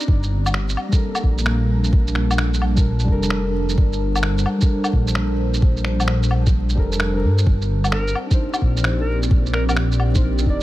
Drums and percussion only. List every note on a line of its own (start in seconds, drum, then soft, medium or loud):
0.00 shaker medium
0.08 kick loud
0.23 shaker soft
0.46 low woodblock medium
0.46 shaker medium
0.54 finger snap medium
0.69 shaker soft
0.77 low woodblock medium
0.92 kick loud
0.92 shaker medium
1.15 low woodblock medium
1.15 shaker soft
1.23 kick medium
1.38 shaker medium
1.46 finger snap loud
1.84 shaker medium
1.93 kick loud
2.07 shaker soft
2.15 finger snap medium
2.31 low woodblock medium
2.31 shaker medium
2.38 finger snap loud
2.54 shaker soft
2.62 low woodblock soft
2.77 kick loud
2.77 shaker medium
2.99 shaker soft
3.08 kick medium
3.23 shaker medium
3.30 finger snap loud
3.69 shaker medium
3.78 kick loud
3.93 shaker soft
4.15 low woodblock medium
4.15 shaker medium
4.23 finger snap loud
4.38 shaker soft
4.46 low woodblock medium
4.61 kick loud
4.61 shaker medium
4.84 low woodblock medium
4.84 shaker soft
4.93 kick medium
5.07 shaker medium
5.15 finger snap loud
5.54 shaker soft
5.62 kick loud
5.77 shaker soft
5.84 finger snap medium
6.00 low woodblock medium
6.00 shaker medium
6.08 finger snap loud
6.23 shaker soft
6.31 low woodblock soft
6.46 kick loud
6.46 shaker medium
6.69 shaker soft
6.78 kick medium
6.92 shaker medium
7.00 finger snap loud
7.38 shaker medium
7.47 kick loud
7.61 shaker soft
7.84 low woodblock medium
7.84 shaker soft
7.92 finger snap loud
8.08 shaker soft
8.15 low woodblock soft
8.31 kick loud
8.31 shaker medium
8.54 low woodblock medium
8.54 shaker soft
8.62 kick medium
8.77 shaker soft
8.84 finger snap loud
9.23 shaker soft
9.31 kick loud
9.46 shaker soft
9.53 finger snap medium
9.69 low woodblock medium
9.69 shaker medium
9.76 finger snap medium
9.92 shaker soft
10.00 low woodblock soft
10.15 kick loud
10.15 shaker medium
10.38 shaker soft
10.46 kick medium